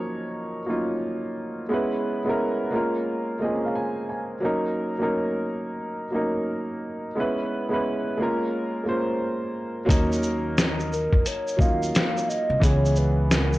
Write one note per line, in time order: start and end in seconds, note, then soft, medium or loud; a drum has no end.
0.00 1.73 F3 medium
0.00 0.65 F#3 medium
0.00 0.66 A#3 medium
0.00 0.68 C#4 medium
0.00 0.69 D#4 medium
0.00 0.70 F4 medium
0.00 1.73 A#4 medium
0.00 0.61 C#5 medium
0.65 1.61 F#3 medium
0.65 1.62 A#3 medium
0.65 1.62 C#4 medium
0.65 1.63 D#4 medium
0.70 1.63 F4 medium
1.69 2.19 G#3 medium
1.69 2.19 B3 medium
1.69 2.20 C#4 medium
1.69 2.20 E4 medium
1.74 2.21 B4 medium
2.24 2.69 G#3 medium
2.24 2.73 B3 medium
2.24 2.71 C#4 medium
2.24 2.74 E4 medium
2.29 2.74 A#4 medium
2.71 3.35 G#3 medium
2.71 3.35 A#3 medium
2.71 3.36 C#4 medium
2.71 3.36 F4 medium
2.75 3.37 A#4 medium
3.39 4.34 G#3 medium
3.39 4.35 A#3 medium
3.39 3.50 C4 medium
3.39 4.36 F4 medium
3.39 3.62 D#5 medium
3.44 4.39 C#4 medium
3.44 4.37 G#4 medium
3.65 3.76 F5 medium
3.75 4.07 G#5 medium
4.09 4.41 G#5 medium
4.40 4.91 F#3 medium
4.40 4.91 A#3 medium
4.40 4.92 C#4 medium
4.45 4.93 D#4 medium
4.45 4.93 A#4 medium
4.98 6.04 F#3 medium
4.98 6.04 A#3 medium
4.98 6.05 C#4 medium
4.98 6.06 D#4 medium
5.03 6.06 A#4 medium
6.11 7.06 F#3 medium
6.11 7.07 A#3 medium
6.11 7.08 C#4 medium
6.11 7.08 D#4 medium
6.15 7.09 A#4 medium
7.15 7.64 G#3 medium
7.15 7.65 B3 medium
7.15 7.66 C#4 medium
7.15 7.66 E4 medium
7.20 7.67 B4 medium
7.69 8.16 G#3 medium
7.69 8.18 B3 medium
7.69 8.18 C#4 medium
7.69 8.19 E4 medium
7.74 8.20 B4 medium
8.17 8.81 G#3 medium
8.17 8.81 A#3 medium
8.17 8.82 C#4 medium
8.17 8.82 F4 medium
8.22 8.83 A#4 medium
8.84 9.79 G#3 medium
8.84 9.80 A#3 medium
8.84 9.81 C#4 medium
8.84 9.81 F4 medium
8.89 9.82 C5 medium
9.85 11.12 F#3 medium
9.85 11.13 A#3 medium
9.85 11.13 C#4 medium
9.85 11.14 D#4 medium
9.85 kick loud
9.89 11.09 D#2 loud
9.89 11.15 A#4 medium
9.89 closed hi-hat medium
9.89 shaker medium
10.12 shaker soft
10.23 shaker medium
10.58 snare loud
10.58 closed hi-hat medium
10.58 shaker medium
10.80 shaker soft
10.93 11.28 A#4 medium
10.93 shaker soft
11.13 11.24 F2 medium
11.13 kick medium
11.26 11.62 C#5 loud
11.26 closed hi-hat medium
11.26 shaker medium
11.48 shaker soft
11.57 11.88 D#2 medium
11.57 12.52 F#3 medium
11.57 12.53 A#3 medium
11.57 12.53 C#4 medium
11.57 12.54 D#4 medium
11.57 kick medium
11.61 12.55 F4 medium
11.61 12.30 F5 loud
11.61 shaker soft
11.83 shaker soft
11.95 snare loud
11.95 closed hi-hat medium
11.95 shaker medium
12.17 shaker soft
12.29 12.65 D#5 loud
12.29 shaker medium
12.50 12.60 C2 medium
12.60 13.58 C#2 loud
12.60 13.58 E3 medium
12.60 13.58 G#3 medium
12.60 13.58 B3 medium
12.60 13.58 C#4 medium
12.60 12.99 C#5 loud
12.60 kick loud
12.60 closed hi-hat medium
12.60 shaker medium
12.65 13.58 G#4 medium
12.85 shaker soft
12.96 13.31 B4 medium
12.96 shaker medium
13.31 13.58 A#4 medium
13.31 snare loud
13.31 closed hi-hat medium
13.31 shaker medium
13.53 shaker soft